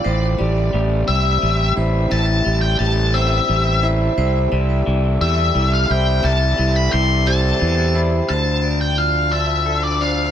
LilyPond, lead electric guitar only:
\new Staff \with { instrumentName = "Lead electric guitar" } { \time 6/8 \key a \minor \tempo 4. = 58 r4. e''4 r8 | a''8. g''16 a''8 e''4 r8 | r4. e''8. f''16 g''8 | a''8. b''16 c'''8 a''4 r8 |
a''8. g''16 f''8 e''8. d''16 f''8 | }